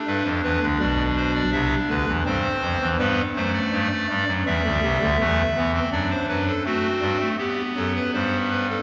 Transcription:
<<
  \new Staff \with { instrumentName = "Pipe organ" } { \time 4/4 \key c \major \tempo 4 = 82 b'8 b'8 d''8 c''16 d''16 e''8 b'8 c''4 | b'8 c''16 d''4~ d''16 e''2 | d''16 c''16 b'16 a'16 fis'4 g'8 a'16 b'16 c''8 b'16 a'16 | }
  \new Staff \with { instrumentName = "Pipe organ" } { \clef bass \time 4/4 \key c \major << { d'2. c'4 | b8 a4. g4 a8 b16 c'16 | d'4 c'4 r2 | } \\ { <g, g>16 <f, f>16 <e, e>16 <d, d>16 <b,, b,>4 <c, c>8 <d, d>16 <e, e>16 <g, g>8 <f, f>16 <e, e>16 | <g, g>8 <fis, fis>8 <g, g>16 a16 <g, g>16 <fis, fis>16 <e, e>16 <d, d>16 <c, c>16 <d, d>16 <e, e>8 <e, e>8 | <fis, fis>8 <fis, fis>8 a8 <g, g>16 a16 b8 <fis, fis>8 <g, g>4 | } >> }
>>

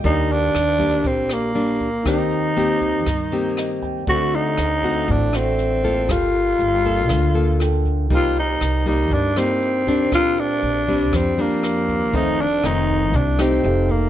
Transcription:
<<
  \new Staff \with { instrumentName = "Grand piano" } { \time 4/4 \key c \dorian \tempo 4 = 119 << { r1 | r2. ees''8 g''8 | r1 | r1 |
r1 | r1 | r1 | } \\ { <bes' d'' g''>1 | <ees' bes' c'' g''>1 | <a' c'' d'' fis''>2~ <a' c'' d'' fis''>8 <d' a' c'' d''>4. | <f' a' g''>2. <f' a' g''>4 |
<ees' bes' c'' g''>2.~ <ees' bes' c'' g''>8 <ees' bes' c'' g''>8 | <d' bes' c'' g''>1 | <ees' a' c'' f''>2. <ees' g' a' f''>4 | } >> }
  \new Staff \with { instrumentName = "Tenor saxophone" } { \time 4/4 \key c \dorian ees'8 d'4. c'8 bes4. | ees'2.~ ees'8 r8 | fis'8 ees'4. d'8 c'4. | f'2.~ f'8 r8 |
f'8 ees'4 ees'8 d'8 c'4. | f'8 d'4. c'8 bes4. | ees'8 d'8 ees'4 d'8 c'4 bes8 | }
  \new Staff \with { instrumentName = "Nylon-string guitar" } { \time 4/4 \key c \dorian << { <g bes d'>4 r8 <g bes d'>4. <g bes d'>8 r8 | <bes c' g'>4 <bes c' g'>4 r8 <bes c' g'>4. | <a c' fis'>4 r8 <a c' fis'>4 <a c' fis'>4 <bes f' a'>8~ | <bes f' a'>4. <bes f' a'>4 <bes f' a'>4. |
<g bes ees'>4. <g bes ees'>4 <g bes ees'>4 <g c' d'>8~ | <g c' d'>4. <g c' d'>4 <g c' d'>4. | <ees a c'>8 r8 <ees a c'>4 r8 <a ees' g'>4. | } \\ { ees2 bes,2 | ees2 ees2 | d2 a,2 | g2 d2 |
c2 g,2 | bes,2 f2 | f,2 c4 r4 | } >> }
  \new Staff \with { instrumentName = "Upright bass" } { \clef bass \time 4/4 \key c \dorian ees,4 ees,4 bes,,2 | ees,4 ees,4 g,2 | d,4 d,4 a,,2 | g,,4 g,,4 d,2 |
c,4 c,4 g,2 | bes,,4 bes,,4 f,2 | f,,4 f,,4 c,4 f,,4 | }
  \new DrumStaff \with { instrumentName = "Drums" } \drummode { \time 4/4 <hh bd>8 hh8 <hh ss>8 <hh bd>8 <hh bd>8 <hh ss>8 hh8 <hh bd>8 | <hh bd ss>8 hh8 hh8 <hh bd>8 <hh bd ss>8 hh8 <hh ss>8 <hh bd>8 | <hh bd>8 hh8 <hh ss>8 <hh bd>8 <hh bd>8 <hh ss>8 hh8 <hh bd>8 | <hh bd ss>8 hh8 hh8 <hh bd>8 <hh bd ss>8 hh8 <hh ss>8 <hh bd>8 |
<hh bd>8 hh8 <hh ss>8 <hh bd>8 <hh bd>8 <hh ss>8 hh8 <hh bd>8 | <hh bd ss>8 hh8 hh8 <hh bd>8 <hh bd ss>8 hh8 <hh ss>8 <hh bd>8 | <hh bd>8 hh8 <hh ss>8 <hh bd>8 <hh bd>8 <hh ss>8 hh8 <hh bd>8 | }
>>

